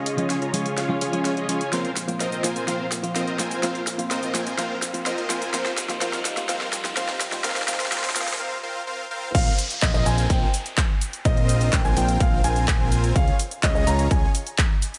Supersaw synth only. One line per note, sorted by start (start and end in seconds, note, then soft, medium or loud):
0.00 0.27 C#4 loud
0.00 0.27 F4 medium
0.00 0.27 G#4 medium
0.00 0.27 C#5 medium
0.00 0.27 D#5 loud
0.30 0.39 C#4 medium
0.30 0.39 F4 medium
0.30 0.39 G#4 medium
0.30 0.39 C#5 medium
0.30 0.39 G#5 medium
0.42 0.52 C#4 medium
0.42 0.52 F4 medium
0.42 0.52 G#4 medium
0.42 0.52 C#5 medium
0.42 0.52 A#5 loud
0.54 0.75 C#4 medium
0.54 0.75 F4 medium
0.54 0.75 G#4 medium
0.54 0.75 C#5 medium
0.54 0.75 G#5 medium
0.78 0.98 C#4 medium
0.78 0.98 F4 medium
0.78 0.98 G#4 medium
0.78 0.98 C#5 medium
0.78 0.98 F5 medium
1.02 1.34 C#4 loud
1.02 1.34 F4 medium
1.02 1.34 G#4 medium
1.02 1.34 C#5 medium
1.02 1.34 G#5 loud
1.37 1.47 C#4 medium
1.37 1.47 F4 medium
1.37 1.47 G#4 medium
1.37 1.47 C#5 medium
1.37 1.47 D#5 medium
1.49 1.69 C#4 medium
1.49 1.69 F4 medium
1.49 1.69 G#4 medium
1.49 1.69 C#5 medium
1.49 1.69 G#5 loud
1.73 1.91 C4 medium
1.73 1.91 F4 medium
1.73 1.91 A#4 medium
1.73 1.91 C5 medium
1.73 1.91 F5 loud
2.20 2.31 C4 medium
2.20 2.31 F4 medium
2.20 2.31 A#4 medium
2.20 2.31 C5 medium
2.20 2.31 D#5 medium
2.32 2.42 C4 medium
2.32 2.42 F4 medium
2.32 2.42 A#4 medium
2.32 2.42 C5 medium
2.32 2.42 D#5 medium
2.44 2.65 C4 medium
2.44 2.65 F4 medium
2.44 2.65 A#4 medium
2.44 2.65 C5 medium
2.44 2.65 G#5 medium
2.68 2.86 C4 medium
2.68 2.86 F4 medium
2.68 2.86 A#4 medium
2.68 2.86 C5 medium
2.68 2.86 F5 loud
3.16 3.26 C4 medium
3.16 3.26 F4 medium
3.16 3.26 A#4 medium
3.16 3.26 C5 medium
3.16 3.26 D#5 medium
3.28 3.38 C4 medium
3.28 3.38 F4 medium
3.28 3.38 A#4 medium
3.28 3.38 C5 medium
3.28 3.38 D#5 loud
3.39 3.60 C4 medium
3.39 3.60 F4 medium
3.39 3.60 A#4 medium
3.39 3.60 C5 medium
3.39 3.60 G#5 medium
3.63 3.81 C4 medium
3.63 3.81 F4 medium
3.63 3.81 A#4 medium
3.63 3.81 C5 medium
3.63 3.81 F5 loud
4.11 4.21 C4 medium
4.11 4.21 F4 medium
4.11 4.21 A#4 medium
4.11 4.21 C5 medium
4.11 4.21 D#5 medium
4.23 4.33 C4 medium
4.23 4.33 F4 medium
4.23 4.33 A#4 medium
4.23 4.33 C5 medium
4.23 4.33 D#5 loud
4.35 4.56 C4 medium
4.35 4.56 F4 medium
4.35 4.56 A#4 medium
4.35 4.56 C5 medium
4.35 4.56 G#5 medium
4.59 4.77 C4 medium
4.59 4.76 F4 medium
4.59 4.76 A#4 medium
4.59 4.76 C5 medium
4.59 4.77 F5 loud
5.06 5.16 C4 medium
5.06 5.16 F4 medium
5.06 5.16 A#4 medium
5.06 5.16 C5 medium
5.06 5.16 D#5 medium
5.18 5.28 C4 medium
5.18 5.28 F4 medium
5.18 5.28 A#4 medium
5.18 5.28 C5 medium
5.18 5.28 D#5 loud
5.30 5.51 C4 medium
5.30 5.51 F4 medium
5.30 5.51 A#4 medium
5.30 5.51 C5 medium
5.30 5.51 G#5 medium
5.54 5.72 C4 loud
5.54 5.72 F4 medium
5.54 5.72 A#4 medium
5.54 5.72 C5 medium
5.54 5.72 F5 loud
6.01 6.19 C4 loud
6.01 6.19 F4 medium
6.01 6.19 A#4 medium
6.01 6.19 C5 medium
6.01 6.19 F5 loud
6.49 6.67 C4 loud
6.49 6.67 F4 medium
6.49 6.67 A#4 medium
6.49 6.67 C5 medium
6.49 6.67 F5 loud
6.97 7.15 C4 loud
6.97 7.15 F4 medium
6.97 7.15 A#4 medium
6.97 7.15 C5 medium
6.97 7.15 F5 loud
7.44 7.62 C4 loud
7.44 7.62 F4 medium
7.44 7.62 A#4 loud
7.44 7.62 C5 medium
7.44 7.62 F5 loud
7.68 7.86 C4 loud
7.68 7.86 F4 medium
7.68 7.86 A#4 medium
7.68 7.86 C5 medium
7.68 7.86 F5 loud
7.92 8.10 C4 loud
7.92 8.10 F4 medium
7.92 8.10 A#4 medium
7.92 8.10 C5 medium
7.92 8.10 F5 loud
8.16 8.34 C4 loud
8.16 8.34 F4 medium
8.16 8.34 A#4 medium
8.16 8.34 C5 medium
8.16 8.34 F5 loud
8.39 8.57 C4 loud
8.39 8.57 F4 medium
8.39 8.57 A#4 medium
8.39 8.57 C5 medium
8.39 8.57 F5 loud
8.63 8.81 C4 loud
8.63 8.81 F4 loud
8.63 8.81 A#4 loud
8.63 8.81 C5 loud
8.63 8.81 F5 loud
8.87 9.05 C4 loud
8.87 9.05 F4 medium
8.87 9.05 A#4 medium
8.87 9.05 C5 medium
8.87 9.05 F5 loud
9.11 9.29 C4 loud
9.11 9.29 F4 medium
9.11 9.29 A#4 medium
9.11 9.29 C5 loud
9.11 9.29 F5 loud
9.35 9.53 C4 loud
9.35 9.53 F4 medium
9.35 9.53 A#4 medium
9.35 9.53 C5 medium
9.35 9.53 F5 loud
9.82 9.92 C4 medium
9.82 9.92 F4 medium
9.82 9.92 A#4 medium
9.82 9.92 C5 medium
9.82 9.92 D#5 loud
9.94 10.04 C4 medium
9.94 10.04 F4 medium
9.94 10.04 A#4 medium
9.94 10.04 C5 medium
9.94 10.04 D#5 loud
10.06 10.27 C4 medium
10.06 10.27 F4 medium
10.06 10.27 A#4 medium
10.06 10.27 C5 medium
10.06 10.27 G#5 medium
10.30 10.48 C4 medium
10.30 10.48 F4 medium
10.30 10.48 A#4 medium
10.30 10.48 C5 medium
11.25 11.70 C4 loud
11.25 11.70 F4 medium
11.25 11.70 A#4 medium
11.25 11.70 C5 medium
11.25 11.70 D#5 loud
11.73 11.82 C4 medium
11.73 11.82 F4 medium
11.73 11.82 C5 medium
11.85 11.95 C4 medium
11.85 11.95 F4 medium
11.85 11.95 A#4 medium
11.85 11.95 C5 medium
11.85 11.95 G#5 loud
11.97 12.18 C4 medium
11.97 12.18 F4 medium
11.97 12.18 A#4 medium
11.97 12.18 C5 medium
11.97 12.18 G5 medium
12.20 12.41 C4 medium
12.20 12.41 F4 medium
12.20 12.41 A#4 medium
12.20 12.41 C5 medium
12.20 12.41 F5 loud
12.44 13.13 C4 medium
12.44 13.13 F4 medium
12.44 13.13 A#4 medium
12.44 13.13 C5 medium
12.44 13.13 G#5 loud
13.16 13.34 C#4 loud
13.16 13.34 F4 medium
13.16 13.34 G#4 medium
13.16 13.34 C#5 medium
13.16 13.34 F5 loud
13.63 13.73 C#4 medium
13.63 13.73 F4 medium
13.63 13.73 G#4 medium
13.63 13.73 C#5 medium
13.63 13.73 D#5 loud
13.75 13.85 C#4 medium
13.75 13.85 F4 medium
13.75 13.85 G#4 medium
13.75 13.85 C#5 medium
13.75 13.85 D#5 loud
13.87 14.08 C#4 medium
13.87 14.08 F4 medium
13.87 14.08 G#4 medium
13.87 14.08 C#5 medium
13.87 14.08 A#5 loud
14.11 14.29 C#4 medium
14.11 14.29 F4 medium
14.11 14.29 G#4 medium
14.11 14.29 C#5 medium
14.11 14.29 G#5 loud